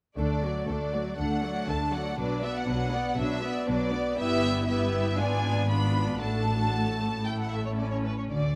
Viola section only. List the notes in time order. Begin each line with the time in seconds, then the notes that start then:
0.17 A3 D4
0.43 F#3 A3
0.68 A3 D4
0.93 F#3 A3
1.18 A3 D4
1.43 F#3 A3
1.68 A3 D4
1.93 F#3 A3
2.18 F#3 D4
2.44 B3
2.68 F#3 D4
2.93 B3
3.18 F#3 D4
3.43 B3
3.69 F#3 D4
3.94 B3
4.19 B3 E4
4.69 B3 E4
5.20 B3 D4
5.70 B3 D4
6.21 A3 D4
6.74 A3
7.26 A3
7.78 C#4